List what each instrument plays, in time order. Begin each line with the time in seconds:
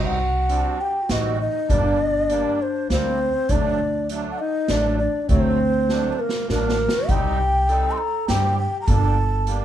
Already playing: upright bass C2, accordion G3 C4 D#4
0.03 clarinet F#4, bansuri F#5
0.48 accordion G3 C4 D4, closed hi-hat
0.64 clarinet F#4
0.80 clarinet G4, bansuri G5
1.02 clarinet F#4
1.08 upright bass A1, accordion G3 C4 F#4, clarinet D#4, bansuri D#5, snare, closed hi-hat
1.39 clarinet D#4, bansuri D#5
1.68 upright bass G1, accordion G3 A#3 D4, clarinet D4, bansuri D5, kick, closed hi-hat
2.29 accordion G3 A#3 D4, closed hi-hat
2.62 bansuri C5
2.89 upright bass D2, accordion G3 A#3 C4, clarinet C4, bansuri C5, snare, closed hi-hat
2.96 clarinet A#3
3.03 clarinet C4
3.34 clarinet C4
3.49 upright bass D2, accordion F#3 A3 D4, clarinet D4, bansuri D5, kick, closed hi-hat
4.09 accordion F#3 A3 D4, closed hi-hat
4.32 bansuri F#5
4.39 clarinet D#4, bansuri D#5
4.68 upright bass A1, accordion F#3 A3 D4, clarinet D4, bansuri D5, snare, closed hi-hat
4.99 clarinet D4, bansuri D5
5.22 clarinet D4
5.28 upright bass D2, accordion F#3 A3 C4, clarinet C4, bansuri C5, kick, closed hi-hat
5.89 accordion F#3 A3 D4, snare
6.12 clarinet C4, bansuri C5
6.19 clarinet A#3, bansuri A#4
6.29 snare
6.47 upright bass A1, accordion F#3 D4, clarinet A#3, bansuri A#4, snare
6.69 snare
6.89 snare
6.94 clarinet F#4
7.09 upright bass C2, accordion G3 C4 D#4, clarinet G4, bansuri G5, kick, closed hi-hat
7.68 accordion G3 C4 D#4, clarinet A4, closed hi-hat
7.91 bansuri C6
7.98 bansuri A#5
8.27 upright bass G2, accordion G3 C4 G4, clarinet G4, bansuri G5, snare, closed hi-hat
8.59 clarinet G4, bansuri G5
8.81 bansuri A#5
8.87 upright bass G1, accordion G3 A#3 D4, clarinet A4, bansuri A5, kick, closed hi-hat
9.46 accordion G3 A#3 D4, closed hi-hat